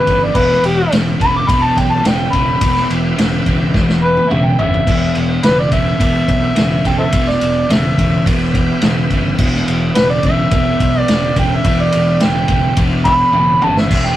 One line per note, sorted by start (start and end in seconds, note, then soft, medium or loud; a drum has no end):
0.00 0.32 G4 medium
0.00 0.25 B4 medium
0.00 0.33 B4 medium
0.00 0.33 E5 medium
0.07 0.29 G1 medium
0.07 0.32 E2 medium
0.07 0.33 C#3 medium
0.07 kick medium
0.07 ride medium
0.23 0.38 D5 medium
0.33 0.57 E1 medium
0.33 0.85 E2 medium
0.33 0.85 B2 medium
0.33 2.59 B4 medium
0.33 0.63 B4 loud
0.33 2.59 E5 medium
0.33 2.59 G5 medium
0.33 kick loud
0.33 crash loud
0.50 snare soft
0.63 0.85 E1 medium
0.63 0.92 G4 loud
0.63 ride medium
0.91 1.14 E1 loud
0.91 1.17 E2 medium
0.91 1.17 C#3 medium
0.91 snare loud
0.91 ride loud
1.20 1.42 E1 medium
1.20 1.45 E2 medium
1.20 1.45 C#3 medium
1.20 1.34 B5 loud
1.20 kick medium
1.20 ride medium
1.37 1.51 D6 loud
1.49 1.71 E1 loud
1.49 2.00 E2 medium
1.49 2.00 B2 loud
1.49 1.65 B5 medium
1.49 kick loud
1.49 ride loud
1.64 1.81 A5 medium
1.77 1.99 B1 medium
1.77 1.93 G5 medium
1.77 kick medium
1.77 ride medium
1.92 2.04 A5 medium
2.04 2.27 E1 medium
2.04 2.30 E2 medium
2.04 2.30 C#3 medium
2.04 2.35 G5 medium
2.04 snare loud
2.04 ride medium
2.33 2.55 E1 medium
2.33 2.58 E2 medium
2.33 2.59 C#3 medium
2.33 2.88 B5 loud
2.33 kick medium
2.33 ride medium
2.61 2.83 E1 medium
2.61 3.12 E2 medium
2.61 3.13 B2 loud
2.61 4.85 B4 medium
2.61 4.85 E5 medium
2.61 4.85 G5 medium
2.61 kick loud
2.61 ride loud
2.76 snare soft
2.90 3.12 E1 medium
2.90 ride medium
3.17 3.40 E1 medium
3.17 3.43 E2 medium
3.17 3.42 C#3 medium
3.17 snare loud
3.17 ride loud
3.46 3.68 E1 medium
3.46 3.71 E2 medium
3.46 3.72 C#3 medium
3.46 kick medium
3.46 ride medium
3.74 4.18 E1 medium
3.74 4.25 E2 medium
3.74 4.25 B2 medium
3.74 kick loud
3.74 snare medium
3.89 snare medium
4.04 4.32 B4 medium
4.17 high tom medium
4.29 4.53 E1 medium
4.29 4.55 E2 medium
4.29 4.55 C#3 medium
4.29 4.46 E5 medium
4.29 mid tom medium
4.44 4.58 G5 medium
4.59 4.81 G1 medium
4.59 4.84 E2 medium
4.59 4.84 C#3 medium
4.59 5.14 E5 loud
4.59 floor tom medium
4.74 floor tom medium
4.87 5.09 E1 medium
4.87 5.38 E2 medium
4.87 5.38 B2 medium
4.87 7.11 G4 medium
4.87 7.11 B4 medium
4.87 7.11 E5 medium
4.87 kick loud
4.87 crash loud
5.15 5.38 E1 medium
5.15 ride medium
5.43 5.66 E1 medium
5.43 5.69 E2 medium
5.43 5.69 C#3 medium
5.43 5.57 B4 loud
5.43 snare loud
5.43 ride medium
5.59 5.72 D5 loud
5.71 5.93 E1 medium
5.71 5.97 E2 medium
5.71 5.98 C#3 medium
5.71 6.82 E5 medium
5.71 kick medium
5.71 ride medium
5.99 6.22 E1 medium
5.99 6.51 E2 medium
5.99 6.51 B2 medium
5.99 kick loud
5.99 ride loud
6.28 6.50 B1 medium
6.28 kick medium
6.28 ride medium
6.56 6.79 E1 medium
6.56 6.81 E2 medium
6.56 6.82 C#3 loud
6.56 snare loud
6.56 ride medium
6.85 7.06 E1 medium
6.85 7.10 E2 medium
6.85 7.11 C#3 medium
6.85 6.98 G5 medium
6.85 kick medium
6.85 ride medium
6.99 7.07 A4 medium
6.99 7.05 C5 medium
6.99 7.30 E5 medium
7.11 7.35 E1 loud
7.11 7.64 E2 medium
7.11 7.64 B2 medium
7.11 7.31 G#4 medium
7.11 7.31 C5 medium
7.11 7.31 F5 medium
7.11 kick loud
7.11 ride loud
7.29 9.37 B4 medium
7.29 7.74 D5 medium
7.29 9.37 E5 medium
7.29 snare soft
7.33 9.37 G4 medium
7.41 7.63 E1 medium
7.41 ride medium
7.69 7.92 E1 medium
7.69 7.95 E2 medium
7.69 7.95 C#3 medium
7.69 8.26 E5 loud
7.69 snare loud
7.69 ride loud
7.98 8.20 E1 medium
7.98 8.23 E2 medium
7.98 8.24 C#3 medium
7.98 kick medium
7.98 ride medium
8.26 8.70 E1 medium
8.26 8.77 E2 medium
8.26 8.77 B2 medium
8.26 kick loud
8.26 ride loud
8.54 kick medium
8.54 ride medium
8.81 9.05 E1 medium
8.81 9.08 E2 medium
8.81 9.08 C#3 medium
8.81 snare loud
8.81 ride medium
9.10 9.32 G1 medium
9.10 9.37 E2 medium
9.10 9.37 C#3 medium
9.10 kick medium
9.10 ride medium
9.38 9.61 E1 medium
9.38 9.90 E2 medium
9.38 9.90 B2 loud
9.38 11.63 G4 medium
9.38 11.63 B4 medium
9.38 11.63 E5 medium
9.38 kick loud
9.38 crash loud
9.54 snare soft
9.68 9.89 E1 medium
9.68 ride medium
9.95 10.18 E1 medium
9.95 10.21 E2 medium
9.95 10.21 C#3 medium
9.95 10.09 B4 loud
9.95 snare loud
9.95 ride loud
10.10 10.23 D5 loud
10.23 10.45 E1 loud
10.23 10.50 E2 medium
10.23 10.50 C#3 medium
10.23 10.99 E5 loud
10.23 kick medium
10.23 ride medium
10.51 10.74 E1 medium
10.51 11.03 E2 medium
10.51 11.04 B2 loud
10.51 kick loud
10.51 ride loud
10.80 11.02 B1 medium
10.80 kick medium
10.80 ride medium
10.99 11.35 D5 loud
11.08 11.31 E1 medium
11.08 11.35 E2 medium
11.08 11.35 C#3 medium
11.08 snare loud
11.08 ride loud
11.36 11.58 E1 medium
11.36 11.63 E2 medium
11.36 11.63 C#3 medium
11.36 11.57 G5 loud
11.36 kick medium
11.36 ride medium
11.55 11.84 E5 medium
11.64 11.87 E1 medium
11.64 12.16 E2 medium
11.64 12.16 B2 loud
11.64 13.89 G4 medium
11.64 13.89 B4 medium
11.64 13.89 E5 medium
11.64 kick loud
11.64 ride loud
11.82 12.25 D5 loud
11.92 12.16 E1 medium
11.92 ride medium
12.20 12.44 E1 medium
12.20 12.47 E2 medium
12.20 12.48 C#3 medium
12.20 12.78 G5 loud
12.20 snare loud
12.20 ride loud
12.48 12.71 E1 medium
12.48 12.75 E2 medium
12.48 12.76 C#3 medium
12.48 kick medium
12.48 ride medium
12.77 13.21 E1 medium
12.77 13.29 E2 medium
12.77 13.29 B2 loud
12.77 kick loud
12.77 ride loud
13.05 13.14 E5 medium
13.05 13.12 G5 medium
13.05 13.66 B5 loud
13.05 kick medium
13.05 ride medium
13.32 13.57 E1 medium
13.32 13.59 E2 medium
13.32 13.59 C#3 medium
13.32 high tom medium
13.62 13.85 G1 medium
13.62 13.87 E2 medium
13.62 13.88 C#3 medium
13.62 13.77 A5 loud
13.62 mid tom medium
13.77 14.07 E5 medium
13.77 snare medium
13.88 14.13 E1 medium
13.88 14.17 E2 medium
13.88 14.17 B2 medium
13.88 14.17 B3 medium
13.88 14.17 G4 medium
13.88 14.17 E5 medium
13.88 kick loud
13.88 splash medium
13.88 crash loud
14.05 14.17 G5 loud
14.05 snare soft